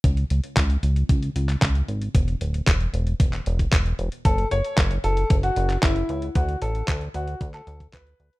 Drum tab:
HH |xxxxxxxxxxxxxxxx|xxxxxxxxxxxxxxxx|xxxxxxxxxxxxxxxx|xxxxxxxxxxxxxxxx|
CP |----x------xx---|----x----x--x---|----x------xx---|----x----x--x---|
BD |o---o---o---o---|o---o---o--oo---|o---o---o---o---|o---o---o--oo---|